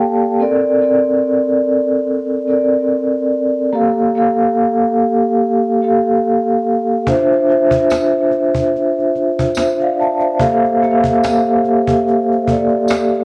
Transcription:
0.00 0.41 A#3 medium
0.00 0.42 G4 medium
0.00 0.41 A4 medium
0.00 0.42 F5 medium
0.00 0.41 G5 medium
0.00 0.37 A5 medium
0.40 0.67 C4 medium
0.40 0.68 A4 medium
0.40 0.68 A#4 medium
0.40 0.69 D5 loud
0.81 1.88 C4 medium
0.81 1.88 A4 medium
0.81 1.89 A#4 medium
0.81 1.89 D5 medium
2.48 3.26 C4 medium
2.48 3.27 A4 medium
2.48 3.27 A#4 medium
2.48 3.28 D5 medium
3.73 4.01 A#3 loud
3.73 4.01 G4 medium
3.73 4.01 A4 medium
3.73 4.02 F5 medium
4.15 5.21 A#3 medium
4.15 5.22 G4 medium
4.15 5.22 A4 medium
4.15 5.22 F5 medium
5.82 6.60 A#3 medium
5.82 6.61 G4 medium
5.82 6.61 A4 medium
5.82 6.61 F5 medium
7.06 7.34 D4 medium
7.06 7.35 F4 medium
7.06 7.35 C5 medium
7.06 7.35 E5 medium
7.06 cajon bass loud
7.32 cajon slap soft
7.48 8.54 D4 medium
7.48 8.55 F4 medium
7.48 8.55 C5 medium
7.48 8.55 E5 medium
7.48 cajon slap soft
7.71 cajon bass medium
7.90 cajon slap medium
7.90 tambourine medium
8.12 cajon slap soft
8.31 cajon slap soft
8.54 cajon bass medium
8.76 cajon slap soft
8.99 cajon slap soft
9.15 cajon slap soft
9.39 cajon bass medium
9.55 9.79 C5 medium
9.55 9.79 E5 medium
9.55 cajon slap medium
9.55 cajon slap loud
9.55 tambourine medium
9.80 9.98 D5 medium
9.80 9.98 F5 medium
9.80 cajon slap soft
10.00 10.21 F5 medium
10.00 10.21 A5 medium
10.00 cajon slap soft
10.20 10.61 C5 medium
10.20 10.61 E5 medium
10.20 cajon slap soft
10.39 10.67 A#3 medium
10.39 10.68 G4 medium
10.39 10.68 A4 medium
10.39 10.68 F5 loud
10.39 cajon bass loud
10.64 cajon slap soft
10.82 11.88 A#3 medium
10.82 11.88 G4 medium
10.82 11.89 A4 medium
10.82 10.90 E5 medium
10.82 cajon slap soft
10.91 11.93 F5 medium
11.04 cajon bass medium
11.24 cajon slap medium
11.24 tambourine medium
11.45 cajon slap soft
11.65 cajon slap soft
11.88 cajon bass medium
12.07 cajon slap soft
12.09 cajon slap soft
12.32 cajon slap soft
12.48 13.24 A#3 medium
12.48 13.24 G4 medium
12.48 13.24 A4 medium
12.48 13.24 D5 medium
12.48 cajon bass medium
12.69 cajon slap soft
12.88 cajon slap medium
12.88 cajon slap loud
12.88 tambourine medium
13.14 cajon slap soft

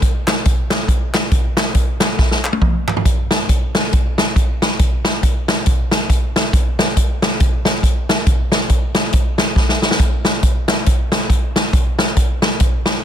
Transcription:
0.02 kick medium
0.02 closed hi-hat medium
0.27 snare loud
0.27 clap medium
0.27 closed hi-hat medium
0.45 kick medium
0.45 closed hi-hat medium
0.70 snare loud
0.70 clap medium
0.70 closed hi-hat medium
0.88 kick medium
0.88 closed hi-hat medium
1.14 snare medium
1.14 clap medium
1.14 closed hi-hat medium
1.31 kick loud
1.31 closed hi-hat medium
1.57 snare loud
1.57 clap medium
1.57 closed hi-hat medium
1.75 kick medium
1.75 closed hi-hat medium
2.00 snare loud
2.00 clap medium
2.00 closed hi-hat medium
2.18 kick medium
2.18 snare medium
2.31 snare medium
2.45 clap medium
2.53 high tom medium
2.61 kick medium
2.61 mid tom medium
2.88 clap medium
2.88 floor tom medium
2.97 floor tom medium
3.05 kick medium
3.05 closed hi-hat medium
3.31 snare loud
3.31 closed hi-hat medium
3.49 kick medium
3.49 closed hi-hat medium
3.75 snare loud
3.75 closed hi-hat medium
3.93 kick medium
3.93 closed hi-hat medium
4.18 snare loud
4.18 closed hi-hat medium
4.36 kick medium
4.36 closed hi-hat medium
4.62 snare medium
4.62 closed hi-hat medium
4.79 kick loud
4.79 closed hi-hat medium
5.05 snare loud
5.05 closed hi-hat medium
5.23 kick medium
5.23 closed hi-hat medium
5.48 snare loud
5.48 closed hi-hat medium
5.66 kick loud
5.66 closed hi-hat medium
5.91 snare loud
5.91 closed hi-hat medium
6.10 kick medium
6.10 closed hi-hat medium
6.36 snare loud
6.36 closed hi-hat medium
6.53 kick loud
6.53 closed hi-hat medium
6.79 snare loud
6.79 closed hi-hat medium
6.97 kick medium
6.97 closed hi-hat medium
7.22 snare loud
7.22 closed hi-hat medium
7.40 kick loud
7.40 closed hi-hat medium
7.65 snare loud
7.65 closed hi-hat medium
7.83 kick medium
7.83 closed hi-hat medium
8.09 snare loud
8.09 closed hi-hat medium
8.27 kick loud
8.27 closed hi-hat medium
8.52 snare loud
8.52 closed hi-hat medium
8.69 kick medium
8.69 closed hi-hat medium
8.95 snare loud
8.95 closed hi-hat medium
9.13 kick medium
9.13 closed hi-hat medium
9.38 snare loud
9.38 closed hi-hat medium
9.56 kick medium
9.56 snare soft
9.69 snare medium
9.82 snare medium
9.91 snare medium
9.99 kick loud
9.99 closed hi-hat medium
10.25 snare loud
10.25 closed hi-hat medium
10.43 kick medium
10.43 closed hi-hat medium
10.68 snare loud
10.68 closed hi-hat medium
10.86 kick medium
10.86 closed hi-hat medium
11.12 snare loud
11.12 closed hi-hat medium
11.30 kick medium
11.30 closed hi-hat medium
11.56 snare loud
11.56 closed hi-hat medium
11.73 kick loud
11.73 closed hi-hat medium
11.99 snare loud
11.99 closed hi-hat medium
12.17 kick medium
12.17 closed hi-hat medium
12.42 snare loud
12.42 closed hi-hat medium
12.60 kick loud
12.60 closed hi-hat medium
12.86 snare loud
12.86 closed hi-hat medium

